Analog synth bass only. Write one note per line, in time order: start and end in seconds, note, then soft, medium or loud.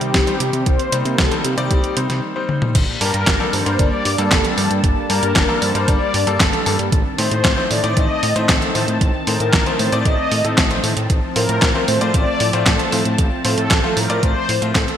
0.01 0.12 C3 medium
0.14 0.25 C2 medium
0.40 0.51 C3 medium
0.53 0.64 C3 medium
0.66 0.77 C2 loud
0.92 1.03 C3 medium
1.05 1.16 C3 medium
1.19 1.29 C2 medium
1.45 1.56 C3 medium
1.58 1.69 C3 medium
1.71 1.82 C2 medium
1.97 2.08 C3 medium
2.10 2.21 C3 medium
2.75 2.86 G1 loud
3.01 3.12 G2 medium
3.14 3.25 G2 loud
3.27 3.38 G1 medium
3.53 3.64 G2 medium
3.66 3.77 G2 loud
3.79 3.90 G1 medium
4.05 4.16 G2 medium
4.18 4.29 G2 medium
4.32 4.43 G1 medium
4.57 4.68 G2 medium
4.71 4.82 G2 loud
4.84 4.95 G1 loud
5.10 5.21 G2 medium
5.23 5.34 G2 medium
5.36 5.47 G1 medium
5.62 5.73 G2 medium
5.75 5.86 G2 medium
5.88 5.99 G1 medium
6.14 6.25 G2 loud
6.27 6.38 G2 loud
6.40 6.51 G1 loud
6.66 6.77 G2 loud
6.79 6.90 G2 medium
6.92 7.03 A1 loud
7.18 7.29 A2 medium
7.31 7.42 A2 loud
7.45 7.56 A1 medium
7.71 7.82 A2 medium
7.84 7.95 A2 medium
7.97 8.08 A1 medium
8.23 8.34 A2 medium
8.36 8.47 A2 medium
8.49 8.60 A1 medium
8.75 8.86 A2 medium
8.88 8.99 A2 loud
9.01 9.12 A1 loud
9.27 9.38 A2 medium
9.40 9.51 A2 loud
9.53 9.64 A1 medium
9.79 9.90 A2 medium
9.92 10.03 A2 medium
10.05 10.16 A1 medium
10.32 10.43 A2 medium
10.45 10.56 A2 medium
10.58 10.80 A1 medium
10.84 10.95 A2 loud
10.97 11.08 A2 loud
11.10 11.21 A1 loud
11.36 11.47 A2 medium
11.49 11.60 A2 medium
11.62 11.73 A1 medium
11.88 11.99 A2 medium
12.01 12.12 A2 medium
12.14 12.25 A1 medium
12.40 12.51 A2 medium
12.53 12.64 A2 medium
12.66 12.77 A1 medium
12.93 13.04 A2 medium
13.06 13.16 A2 medium
13.19 13.30 A1 loud
13.45 13.56 A2 medium
13.58 13.69 A2 loud
13.71 13.82 A1 medium
13.97 14.08 A2 medium
14.10 14.21 A2 medium
14.23 14.34 A1 loud
14.49 14.60 A2 medium
14.62 14.73 A2 medium
14.75 14.86 A1 medium